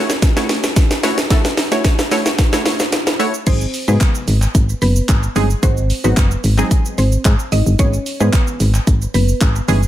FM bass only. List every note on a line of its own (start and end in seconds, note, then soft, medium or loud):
3.47 3.66 G#1 loud
3.88 3.97 G#2 loud
4.28 4.47 G#1 medium
4.55 4.74 G#1 loud
4.82 5.01 F#1 medium
5.09 5.28 G#1 medium
5.36 5.55 G1 medium
5.63 5.92 G#1 loud
6.04 6.13 G#1 loud
6.17 6.36 F#1 loud
6.44 6.63 G#1 loud
6.98 7.17 G#1 medium
7.25 7.35 G#2 loud
7.52 7.62 G#1 loud
7.66 7.75 G1 loud
7.79 7.98 G#1 loud
8.21 8.29 G#2 loud
8.60 8.79 G#1 loud
8.87 9.06 G#1 medium
9.14 9.33 F#1 medium
9.41 9.60 G#1 loud
9.68 9.87 G1 loud